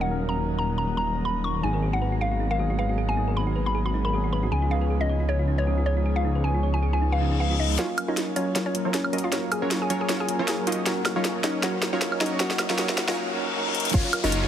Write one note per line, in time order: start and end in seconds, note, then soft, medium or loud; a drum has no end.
0.00 1.61 D#1 medium
0.00 0.07 F#3 medium
0.00 0.08 A#3 medium
0.00 0.09 C#4 medium
0.00 0.10 D#4 medium
0.00 0.11 A#4 loud
0.00 0.21 F#5 medium
0.07 1.02 F#3 medium
0.07 1.03 A#3 medium
0.07 1.03 C#4 medium
0.07 1.04 D#4 medium
0.07 1.04 A#4 medium
0.29 0.49 A#5 medium
0.59 0.71 A#5 medium
0.78 0.91 A#5 medium
0.97 1.17 A#5 medium
1.25 1.39 B5 medium
1.44 1.58 C#6 medium
1.61 4.50 G#1 medium
1.61 2.56 F#3 medium
1.61 2.57 A#3 medium
1.61 2.57 B3 medium
1.61 1.70 D#4 medium
1.61 2.58 D#4 medium
1.61 2.58 G#4 medium
1.61 1.84 G#5 medium
1.74 1.82 A#4 medium
1.83 1.89 G#4 medium
1.93 1.99 F#4 medium
1.93 2.13 F#5 medium
2.02 2.08 B4 medium
2.12 2.16 F#4 medium
2.21 2.25 G#4 loud
2.21 2.41 F5 medium
2.31 2.40 F#4 medium
2.40 2.47 D#4 medium
2.51 2.59 A#4 medium
2.51 2.71 F5 medium
2.58 2.86 F#3 medium
2.58 2.86 A#3 medium
2.58 2.87 B3 medium
2.58 2.87 D#4 medium
2.58 2.66 G#4 medium
2.58 2.87 G#4 loud
2.70 2.76 F#4 medium
2.79 2.85 B4 medium
2.79 2.99 F5 medium
2.88 3.14 F#3 medium
2.88 3.15 A#3 medium
2.88 3.15 B3 medium
2.88 3.15 D#4 medium
2.88 2.93 F#4 medium
2.88 3.15 G#4 medium
2.98 3.02 G#4 loud
3.09 3.17 F#4 medium
3.09 3.29 G#5 medium
3.15 4.10 F#3 medium
3.15 4.11 A#3 medium
3.15 4.11 B3 medium
3.15 3.24 D#4 medium
3.15 4.12 D#4 medium
3.19 4.12 G#4 medium
3.28 3.36 A#4 medium
3.36 3.43 G#4 medium
3.36 3.57 B5 medium
3.47 3.52 F#4 medium
3.56 3.62 B4 medium
3.66 3.69 F#4 medium
3.66 3.79 B5 medium
3.75 3.79 G#4 loud
3.85 3.94 F#4 medium
3.85 3.98 B5 medium
3.94 4.01 D#4 medium
4.05 4.13 A#4 medium
4.05 4.25 B5 medium
4.12 4.40 F#3 medium
4.12 4.40 A#3 medium
4.12 4.41 B3 medium
4.12 4.41 D#4 medium
4.12 4.20 G#4 medium
4.12 4.41 G#4 loud
4.24 4.29 F#4 medium
4.32 4.39 B4 medium
4.32 4.47 B5 medium
4.42 4.68 F3 medium
4.42 4.69 B3 medium
4.42 4.69 C#4 medium
4.42 4.69 D#4 medium
4.42 4.46 F#4 medium
4.42 4.69 G#4 medium
4.52 7.77 C#2 medium
4.52 4.56 G#4 loud
4.52 4.66 G#5 medium
4.62 4.70 F4 medium
4.69 5.64 F3 medium
4.69 5.64 B3 medium
4.69 5.65 C#4 medium
4.69 4.78 D#4 medium
4.69 5.65 D#4 medium
4.69 5.66 G#4 medium
4.69 4.91 F5 medium
4.82 4.90 B4 medium
4.90 4.97 G#4 medium
5.01 5.06 F4 medium
5.01 5.21 D#5 medium
5.09 5.16 C#5 medium
5.20 5.23 F4 medium
5.29 5.33 G#4 loud
5.29 5.49 C#5 medium
5.39 5.47 F4 medium
5.48 5.55 D#4 medium
5.58 5.67 B4 medium
5.58 5.78 C#5 medium
5.66 5.94 F3 medium
5.66 5.94 B3 medium
5.66 5.94 C#4 medium
5.66 5.95 D#4 medium
5.66 5.74 G#4 medium
5.66 5.95 G#4 loud
5.78 5.83 F4 medium
5.86 6.06 C#5 medium
5.86 5.93 C#5 medium
5.96 6.22 F3 medium
5.96 6.22 B3 medium
5.96 6.23 C#4 medium
5.96 6.23 D#4 medium
5.96 6.00 F4 medium
5.96 6.23 G#4 medium
6.06 6.10 G#4 loud
6.16 6.24 F4 medium
6.16 6.36 F5 medium
6.23 7.18 F3 medium
6.23 7.18 B3 medium
6.23 7.19 C#4 medium
6.23 6.32 D#4 medium
6.23 7.19 D#4 medium
6.23 7.20 G#4 medium
6.35 6.44 B4 medium
6.44 6.51 G#4 medium
6.44 6.64 G#5 medium
6.55 6.60 F4 medium
6.63 6.70 C#5 medium
6.74 6.77 F4 medium
6.74 6.87 G#5 medium
6.82 6.87 G#4 loud
6.93 7.01 F4 medium
6.93 7.06 G#5 medium
7.02 7.08 D#4 medium
7.02 reverse cymbal medium
7.12 7.20 B4 medium
7.12 7.32 F5 medium
7.20 7.48 F3 medium
7.20 7.48 B3 medium
7.20 7.48 C#4 medium
7.20 7.30 D#4 medium
7.20 7.48 D#4 medium
7.20 7.49 G#4 loud
7.31 7.37 D#4 medium
7.40 7.47 B4 medium
7.40 7.54 F5 medium
7.50 7.76 F3 medium
7.50 7.76 B3 medium
7.50 7.76 C#4 medium
7.50 7.77 D#4 medium
7.50 7.56 F4 medium
7.50 7.77 G#4 medium
7.59 7.66 D#4 medium
7.59 7.73 D#5 medium
7.70 7.78 D#4 medium
7.77 8.72 F#3 medium
7.77 7.88 F#3 medium
7.77 8.72 A#3 medium
7.77 7.88 C#4 medium
7.77 8.73 C#4 medium
7.77 7.88 F4 medium
7.77 7.99 F4 medium
7.77 7.88 A#4 medium
7.77 7.88 C#5 loud
7.77 7.99 F5 loud
7.77 snare soft
7.77 closed hi-hat medium
7.77 riser medium
7.81 8.74 A#4 medium
7.98 closed hi-hat medium
7.98 high woodblock medium
8.08 8.34 F#3 medium
8.08 8.34 C#4 medium
8.08 8.28 D#4 medium
8.08 8.34 F4 medium
8.08 8.34 A#4 medium
8.08 8.34 C#5 loud
8.08 8.28 D#5 medium
8.17 snare soft
8.17 closed hi-hat medium
8.36 8.53 F#3 loud
8.36 8.56 C#4 medium
8.36 8.53 C#4 medium
8.36 8.53 F4 medium
8.36 8.53 A#4 medium
8.36 8.53 C#5 loud
8.36 8.56 C#5 medium
8.36 closed hi-hat medium
8.55 8.83 F#3 medium
8.55 8.83 C#4 medium
8.55 8.83 F4 medium
8.55 8.83 A#4 medium
8.55 8.83 C#5 loud
8.55 snare medium
8.55 closed hi-hat medium
8.66 8.86 C#4 medium
8.66 8.86 C#5 medium
8.74 9.01 F#3 medium
8.74 9.02 A#3 medium
8.74 9.02 C#4 medium
8.74 9.02 F4 medium
8.74 9.02 A#4 loud
8.74 closed hi-hat medium
8.85 9.11 F#3 medium
8.85 9.11 C#4 medium
8.85 9.11 F4 medium
8.85 9.11 A#4 medium
8.85 9.11 C#5 medium
8.94 9.14 C#4 medium
8.94 9.14 C#5 medium
8.94 snare medium
8.94 closed hi-hat medium
9.03 9.29 F#3 medium
9.03 9.30 A#3 medium
9.03 9.30 C#4 medium
9.03 9.31 F4 medium
9.03 9.31 A#4 medium
9.03 high woodblock medium
9.13 9.28 F#3 medium
9.13 9.28 C#4 medium
9.13 9.28 F4 medium
9.13 9.28 A#4 medium
9.13 9.28 D#5 loud
9.13 closed hi-hat medium
9.18 closed hi-hat medium
9.24 9.44 F4 medium
9.24 9.44 F5 medium
9.30 10.26 F#3 medium
9.30 9.42 F#3 medium
9.30 10.26 A#3 medium
9.30 9.42 C#4 medium
9.30 10.27 C#4 medium
9.30 9.42 F4 medium
9.30 10.27 F4 medium
9.30 9.42 A#4 medium
9.30 9.42 C#5 loud
9.30 snare medium
9.30 closed hi-hat medium
9.35 10.28 A#4 medium
9.52 9.72 G#4 medium
9.52 9.72 G#5 medium
9.52 closed hi-hat medium
9.52 high woodblock medium
9.62 9.88 F#3 loud
9.62 9.88 C#4 medium
9.62 9.88 F4 medium
9.62 9.88 A#4 medium
9.62 9.88 C#5 loud
9.71 snare medium
9.71 closed hi-hat medium
9.82 9.95 G#4 medium
9.82 9.94 G#5 medium
9.90 10.07 F#3 loud
9.90 10.07 C#4 medium
9.90 10.07 F4 medium
9.90 10.07 A#4 medium
9.90 10.07 C#5 loud
9.90 closed hi-hat medium
10.01 10.14 G#4 medium
10.01 10.14 G#5 medium
10.09 10.37 F#3 medium
10.09 10.37 C#4 medium
10.09 10.37 F4 medium
10.09 10.37 A#4 medium
10.09 10.37 C#5 loud
10.09 snare medium
10.09 closed hi-hat medium
10.20 10.40 G#4 medium
10.20 10.40 G#5 loud
10.28 10.56 F#3 medium
10.28 10.56 A#3 medium
10.28 10.56 C#4 medium
10.28 10.56 F4 medium
10.28 10.57 A#4 loud
10.28 closed hi-hat medium
10.39 10.65 F#3 medium
10.39 10.65 C#4 medium
10.39 10.65 F4 medium
10.39 10.65 A#4 medium
10.39 10.65 C#5 medium
10.48 10.62 G#4 medium
10.48 10.62 G#5 medium
10.48 snare medium
10.48 closed hi-hat medium
10.58 10.83 F#3 medium
10.58 10.84 A#3 medium
10.58 10.84 C#4 medium
10.58 10.85 D#4 medium
10.58 10.85 A#4 medium
10.67 10.82 F#3 medium
10.67 10.82 C#4 medium
10.67 10.82 D#4 medium
10.67 10.81 F4 medium
10.67 10.82 A#4 medium
10.67 10.82 D#5 loud
10.67 10.81 F5 medium
10.67 closed hi-hat medium
10.72 closed hi-hat medium
10.84 11.60 F#3 medium
10.84 10.96 F#3 medium
10.84 11.61 A#3 medium
10.84 11.62 C#4 medium
10.84 10.96 C#4 medium
10.84 10.96 D#4 medium
10.84 11.62 D#4 medium
10.84 11.07 F#4 medium
10.84 10.96 A#4 medium
10.84 10.96 C#5 medium
10.84 11.07 F#5 medium
10.84 snare medium
10.84 closed hi-hat medium
10.88 11.63 A#4 medium
11.05 snare medium
11.05 closed hi-hat medium
11.05 high woodblock medium
11.16 11.42 F#3 medium
11.16 11.42 C#4 medium
11.16 11.42 D#4 medium
11.16 11.36 F4 medium
11.16 11.42 A#4 medium
11.16 11.42 C#5 loud
11.16 11.36 F5 medium
11.25 snare medium
11.25 closed hi-hat medium
11.44 11.61 F#3 medium
11.44 11.61 C#4 medium
11.44 11.62 D#4 medium
11.44 11.61 D#4 medium
11.44 11.61 A#4 medium
11.44 11.61 C#5 loud
11.44 11.62 D#5 medium
11.44 snare medium
11.44 closed hi-hat medium
11.61 12.37 F#3 medium
11.61 11.73 F#3 medium
11.61 12.38 A#3 medium
11.61 11.73 C#4 medium
11.61 12.39 C#4 medium
11.61 11.73 D#4 medium
11.61 12.39 D#4 medium
11.61 11.83 F#4 medium
11.61 11.73 A#4 medium
11.61 11.73 C#5 medium
11.61 11.83 F#5 loud
11.61 snare medium
11.61 closed hi-hat medium
11.65 12.40 A#4 medium
11.82 snare medium
11.82 closed hi-hat medium
11.93 12.19 F#3 medium
11.93 12.19 C#4 medium
11.93 12.19 D#4 medium
11.93 12.13 F4 medium
11.93 12.19 A#4 medium
11.93 12.19 C#5 loud
11.93 12.13 F5 medium
12.02 snare medium
12.02 closed hi-hat medium
12.12 high woodblock medium
12.21 12.38 F#3 loud
12.21 12.38 C#4 medium
12.21 12.39 D#4 medium
12.21 12.38 D#4 medium
12.21 12.38 A#4 medium
12.21 12.38 C#5 loud
12.21 12.39 D#5 medium
12.21 snare medium
12.21 closed hi-hat medium
12.26 closed hi-hat medium
12.38 12.75 F#3 medium
12.38 12.50 F#3 medium
12.38 12.76 A#3 medium
12.38 12.50 C#4 medium
12.38 12.77 C#4 medium
12.38 12.50 D#4 medium
12.38 12.78 D#4 medium
12.38 12.60 F#4 medium
12.38 12.50 A#4 medium
12.38 12.50 C#5 medium
12.38 12.60 F#5 loud
12.38 snare medium
12.38 closed hi-hat medium
12.42 12.78 A#4 medium
12.50 snare medium
12.59 snare medium
12.59 closed hi-hat medium
12.59 high woodblock medium
12.70 12.77 F#3 medium
12.70 12.77 C#4 medium
12.70 12.77 D#4 medium
12.70 12.77 F4 medium
12.70 12.77 A#4 medium
12.70 12.77 C#5 loud
12.70 12.77 F5 medium
12.70 snare medium
12.76 13.14 F#3 medium
12.76 12.88 F#3 medium
12.76 13.15 A#3 medium
12.76 12.88 C#4 medium
12.76 13.16 C#4 medium
12.76 12.88 D#4 medium
12.76 13.16 D#4 medium
12.76 12.99 F#4 medium
12.76 12.88 A#4 medium
12.76 13.17 A#4 medium
12.76 12.88 C#5 medium
12.76 12.99 F#5 loud
12.76 snare loud
12.76 closed hi-hat medium
12.89 snare medium
12.98 snare loud
12.98 closed hi-hat medium
13.08 13.16 F#3 loud
13.08 13.16 C#4 medium
13.08 13.16 D#4 medium
13.08 13.16 F4 medium
13.08 13.16 A#4 medium
13.08 13.16 C#5 loud
13.08 13.16 F5 medium
13.08 snare medium
13.15 13.33 F#3 medium
13.15 13.34 A#3 medium
13.15 13.35 C#4 medium
13.15 13.35 D#4 medium
13.15 13.36 A#4 medium
13.15 reverse cymbal medium
13.34 13.52 F#3 medium
13.34 13.54 A#3 medium
13.34 13.54 C#4 medium
13.34 13.55 D#4 medium
13.34 13.55 A#4 loud
13.53 13.71 F#3 medium
13.53 13.72 A#3 medium
13.53 13.73 C#4 medium
13.53 13.74 D#4 medium
13.57 13.74 A#4 loud
13.72 13.91 F#3 medium
13.72 13.92 A#3 medium
13.72 13.93 C#4 medium
13.72 13.93 D#4 medium
13.72 closed hi-hat medium
13.77 13.94 A#4 medium
13.77 closed hi-hat medium
13.85 closed hi-hat medium
13.90 closed hi-hat medium
13.94 14.02 F#1 medium
13.94 14.04 F#3 medium
13.94 14.04 C#4 medium
13.94 14.14 F4 medium
13.94 14.01 F4 medium
13.94 14.04 F4 medium
13.94 14.04 A#4 medium
13.94 14.04 C#5 loud
13.94 14.14 F5 loud
13.94 kick loud
13.94 crash loud
13.94 downlifter medium
14.05 14.13 C#5 medium
14.13 14.20 A#4 medium
14.13 closed hi-hat medium
14.13 high woodblock medium
14.24 14.48 F#1 loud
14.24 14.48 F#3 loud
14.24 14.48 C#4 medium
14.24 14.44 D#4 medium
14.24 14.48 F4 medium
14.24 14.29 F#4 medium
14.24 14.48 A#4 medium
14.24 14.48 C#5 loud
14.24 14.44 D#5 medium
14.32 14.39 F5 medium
14.32 closed hi-hat medium
14.43 14.46 F#4 medium